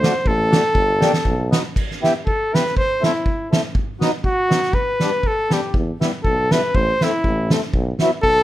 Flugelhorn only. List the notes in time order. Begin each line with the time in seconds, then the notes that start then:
Already playing: C5
0.28 A4
2.26 A4
2.55 B4
2.77 C5
3.05 E4
4.26 F#4
4.74 B4
5.27 A4
5.53 G4
6.23 A4
6.52 B4
6.75 C5
7.04 E4
8.22 A4